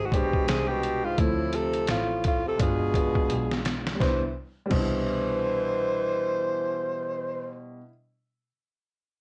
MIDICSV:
0, 0, Header, 1, 6, 480
1, 0, Start_track
1, 0, Key_signature, 0, "major"
1, 0, Tempo, 705882
1, 803, Time_signature, 4, 2, 24, 8
1, 6261, End_track
2, 0, Start_track
2, 0, Title_t, "Alto saxophone"
2, 0, Program_c, 0, 65
2, 38, Note_on_c, 0, 66, 66
2, 93, Note_on_c, 0, 67, 86
2, 104, Note_off_c, 0, 66, 0
2, 330, Note_on_c, 0, 68, 93
2, 340, Note_off_c, 0, 67, 0
2, 463, Note_on_c, 0, 67, 86
2, 473, Note_off_c, 0, 68, 0
2, 714, Note_on_c, 0, 65, 94
2, 724, Note_off_c, 0, 67, 0
2, 815, Note_on_c, 0, 64, 94
2, 825, Note_off_c, 0, 65, 0
2, 1057, Note_on_c, 0, 69, 98
2, 1068, Note_off_c, 0, 64, 0
2, 1290, Note_off_c, 0, 69, 0
2, 1299, Note_on_c, 0, 65, 86
2, 1515, Note_off_c, 0, 65, 0
2, 1548, Note_on_c, 0, 65, 86
2, 1668, Note_off_c, 0, 65, 0
2, 1688, Note_on_c, 0, 69, 90
2, 1769, Note_off_c, 0, 69, 0
2, 1784, Note_on_c, 0, 68, 96
2, 2466, Note_off_c, 0, 68, 0
2, 2724, Note_on_c, 0, 72, 84
2, 2873, Note_off_c, 0, 72, 0
2, 3202, Note_on_c, 0, 72, 88
2, 5159, Note_off_c, 0, 72, 0
2, 6261, End_track
3, 0, Start_track
3, 0, Title_t, "Upright piano"
3, 0, Program_c, 1, 0
3, 75, Note_on_c, 1, 56, 74
3, 83, Note_on_c, 1, 72, 66
3, 89, Note_on_c, 1, 62, 67
3, 98, Note_on_c, 1, 67, 74
3, 728, Note_off_c, 1, 56, 0
3, 732, Note_off_c, 1, 72, 0
3, 735, Note_off_c, 1, 62, 0
3, 739, Note_off_c, 1, 67, 0
3, 796, Note_on_c, 1, 57, 63
3, 801, Note_on_c, 1, 60, 56
3, 808, Note_on_c, 1, 76, 57
3, 816, Note_on_c, 1, 53, 76
3, 1665, Note_off_c, 1, 57, 0
3, 1667, Note_off_c, 1, 60, 0
3, 1671, Note_off_c, 1, 76, 0
3, 1675, Note_off_c, 1, 53, 0
3, 1751, Note_on_c, 1, 56, 77
3, 1761, Note_on_c, 1, 59, 73
3, 1768, Note_on_c, 1, 62, 73
3, 1774, Note_on_c, 1, 65, 93
3, 1973, Note_off_c, 1, 56, 0
3, 1978, Note_off_c, 1, 59, 0
3, 1982, Note_off_c, 1, 62, 0
3, 1985, Note_off_c, 1, 65, 0
3, 1993, Note_on_c, 1, 56, 72
3, 2003, Note_on_c, 1, 59, 61
3, 2007, Note_on_c, 1, 62, 61
3, 2017, Note_on_c, 1, 65, 78
3, 2647, Note_off_c, 1, 56, 0
3, 2652, Note_off_c, 1, 59, 0
3, 2654, Note_off_c, 1, 62, 0
3, 2659, Note_off_c, 1, 65, 0
3, 2686, Note_on_c, 1, 55, 68
3, 2716, Note_on_c, 1, 59, 64
3, 2744, Note_on_c, 1, 62, 70
3, 2773, Note_on_c, 1, 64, 73
3, 2853, Note_off_c, 1, 55, 0
3, 2869, Note_off_c, 1, 59, 0
3, 2884, Note_off_c, 1, 62, 0
3, 2900, Note_off_c, 1, 64, 0
3, 3167, Note_on_c, 1, 55, 82
3, 3193, Note_on_c, 1, 47, 72
3, 3225, Note_on_c, 1, 62, 64
3, 3254, Note_on_c, 1, 64, 83
3, 5279, Note_off_c, 1, 55, 0
3, 5306, Note_off_c, 1, 47, 0
3, 5338, Note_off_c, 1, 62, 0
3, 5366, Note_off_c, 1, 64, 0
3, 6261, End_track
4, 0, Start_track
4, 0, Title_t, "Tenor saxophone"
4, 0, Program_c, 2, 66
4, 38, Note_on_c, 2, 44, 58
4, 91, Note_on_c, 2, 47, 78
4, 102, Note_off_c, 2, 44, 0
4, 327, Note_on_c, 2, 48, 79
4, 337, Note_off_c, 2, 47, 0
4, 478, Note_on_c, 2, 47, 84
4, 488, Note_off_c, 2, 48, 0
4, 714, Note_on_c, 2, 44, 76
4, 724, Note_off_c, 2, 47, 0
4, 815, Note_on_c, 2, 45, 80
4, 825, Note_off_c, 2, 44, 0
4, 1049, Note_on_c, 2, 48, 82
4, 1059, Note_off_c, 2, 45, 0
4, 1286, Note_off_c, 2, 48, 0
4, 1296, Note_on_c, 2, 45, 77
4, 1513, Note_off_c, 2, 45, 0
4, 1529, Note_on_c, 2, 45, 76
4, 1657, Note_off_c, 2, 45, 0
4, 1670, Note_on_c, 2, 48, 72
4, 1759, Note_off_c, 2, 48, 0
4, 1772, Note_on_c, 2, 47, 71
4, 2460, Note_off_c, 2, 47, 0
4, 2720, Note_on_c, 2, 52, 74
4, 2871, Note_off_c, 2, 52, 0
4, 3200, Note_on_c, 2, 52, 78
4, 5158, Note_off_c, 2, 52, 0
4, 6261, End_track
5, 0, Start_track
5, 0, Title_t, "Double bass"
5, 0, Program_c, 3, 43
5, 0, Note_on_c, 3, 32, 85
5, 303, Note_off_c, 3, 32, 0
5, 326, Note_on_c, 3, 36, 88
5, 780, Note_off_c, 3, 36, 0
5, 807, Note_on_c, 3, 38, 101
5, 1261, Note_off_c, 3, 38, 0
5, 1287, Note_on_c, 3, 33, 80
5, 1741, Note_off_c, 3, 33, 0
5, 1769, Note_on_c, 3, 31, 87
5, 2222, Note_off_c, 3, 31, 0
5, 2244, Note_on_c, 3, 35, 83
5, 2699, Note_off_c, 3, 35, 0
5, 2723, Note_on_c, 3, 36, 87
5, 2873, Note_off_c, 3, 36, 0
5, 3205, Note_on_c, 3, 36, 96
5, 5161, Note_off_c, 3, 36, 0
5, 6261, End_track
6, 0, Start_track
6, 0, Title_t, "Drums"
6, 81, Note_on_c, 9, 36, 93
6, 92, Note_on_c, 9, 42, 75
6, 149, Note_off_c, 9, 36, 0
6, 160, Note_off_c, 9, 42, 0
6, 228, Note_on_c, 9, 36, 75
6, 296, Note_off_c, 9, 36, 0
6, 329, Note_on_c, 9, 42, 86
6, 332, Note_on_c, 9, 38, 116
6, 397, Note_off_c, 9, 42, 0
6, 400, Note_off_c, 9, 38, 0
6, 568, Note_on_c, 9, 42, 69
6, 636, Note_off_c, 9, 42, 0
6, 803, Note_on_c, 9, 42, 82
6, 804, Note_on_c, 9, 36, 99
6, 871, Note_off_c, 9, 42, 0
6, 872, Note_off_c, 9, 36, 0
6, 1040, Note_on_c, 9, 42, 72
6, 1108, Note_off_c, 9, 42, 0
6, 1181, Note_on_c, 9, 42, 55
6, 1249, Note_off_c, 9, 42, 0
6, 1276, Note_on_c, 9, 42, 84
6, 1283, Note_on_c, 9, 38, 87
6, 1344, Note_off_c, 9, 42, 0
6, 1351, Note_off_c, 9, 38, 0
6, 1524, Note_on_c, 9, 42, 74
6, 1530, Note_on_c, 9, 36, 92
6, 1592, Note_off_c, 9, 42, 0
6, 1598, Note_off_c, 9, 36, 0
6, 1765, Note_on_c, 9, 42, 86
6, 1767, Note_on_c, 9, 36, 85
6, 1833, Note_off_c, 9, 42, 0
6, 1835, Note_off_c, 9, 36, 0
6, 1999, Note_on_c, 9, 36, 97
6, 2007, Note_on_c, 9, 42, 78
6, 2067, Note_off_c, 9, 36, 0
6, 2075, Note_off_c, 9, 42, 0
6, 2144, Note_on_c, 9, 36, 79
6, 2212, Note_off_c, 9, 36, 0
6, 2243, Note_on_c, 9, 42, 78
6, 2311, Note_off_c, 9, 42, 0
6, 2391, Note_on_c, 9, 38, 64
6, 2459, Note_off_c, 9, 38, 0
6, 2483, Note_on_c, 9, 42, 76
6, 2488, Note_on_c, 9, 38, 87
6, 2551, Note_off_c, 9, 42, 0
6, 2556, Note_off_c, 9, 38, 0
6, 2630, Note_on_c, 9, 38, 85
6, 2698, Note_off_c, 9, 38, 0
6, 2723, Note_on_c, 9, 36, 95
6, 2729, Note_on_c, 9, 38, 83
6, 2791, Note_off_c, 9, 36, 0
6, 2797, Note_off_c, 9, 38, 0
6, 3200, Note_on_c, 9, 49, 79
6, 3202, Note_on_c, 9, 36, 96
6, 3268, Note_off_c, 9, 49, 0
6, 3270, Note_off_c, 9, 36, 0
6, 6261, End_track
0, 0, End_of_file